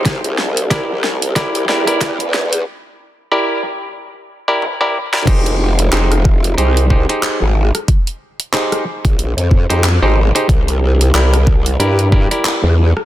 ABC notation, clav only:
X:1
M:4/4
L:1/16
Q:"Swing 16ths" 1/4=92
K:Fdor
V:1 name="Clav"
z4 [=EGBd] z3 [EGBd]2 [EGBd] [EGBd]2 z3 | z4 [=EGBd]2 z4 z [EGBd] z [EGBd] z [EGBd] | [EGAc]4 [EGAc] z3 [EGAc]2 [EGAc] [EGAc]2 z3 | z4 [EGAc]2 z4 z [EGAc] z [EGAc] z [EGAc] |
z4 [=EGBd] z3 [EGBd]2 [EGBd] [EGBd]2 z3 |]